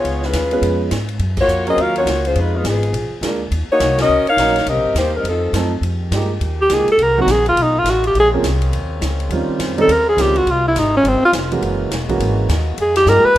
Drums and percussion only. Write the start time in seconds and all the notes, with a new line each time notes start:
0.05 ride
0.22 snare
0.33 snare, hi-hat pedal, ride
0.51 ride
0.63 ride
0.91 snare, hi-hat pedal, ride
1.08 ride
1.19 ride
1.37 kick, crash
1.48 hi-hat pedal
1.67 ride
1.78 ride
1.96 ride
2.07 snare, hi-hat pedal, ride
2.25 ride
2.35 ride
2.65 snare, hi-hat pedal, ride
2.83 ride
2.94 ride
3.23 snare, hi-hat pedal, ride
3.52 ride
3.80 snare, hi-hat pedal, ride
3.98 snare, ride
4.27 ride
4.38 snare, hi-hat pedal, ride
4.47 snare
4.56 snare, ride
4.66 ride
4.96 snare, hi-hat pedal, ride
5.25 ride
5.54 snare, hi-hat pedal, ride
5.83 ride
6.12 snare, hi-hat pedal, ride
6.41 ride
6.70 snare, hi-hat pedal, ride
6.88 ride
6.99 ride
7.28 snare, hi-hat pedal, ride
7.46 ride
7.57 ride
7.85 snare, hi-hat pedal, ride
8.04 ride
8.15 ride
8.44 snare, hi-hat pedal, ride
8.62 ride
8.73 ride
9.02 snare, hi-hat pedal, ride
9.20 ride
9.30 ride
9.60 snare, hi-hat pedal, ride
9.78 ride
9.89 ride
10.18 snare, hi-hat pedal, ride
10.36 ride
10.47 ride
10.76 snare, hi-hat pedal, ride
11.05 ride
11.33 snare, hi-hat pedal, ride
11.52 ride
11.62 ride
11.91 snare, hi-hat pedal, ride
12.09 kick, ride
12.20 ride
12.49 snare, hi-hat pedal, ride
12.78 ride
12.96 snare, ride
13.07 snare, hi-hat pedal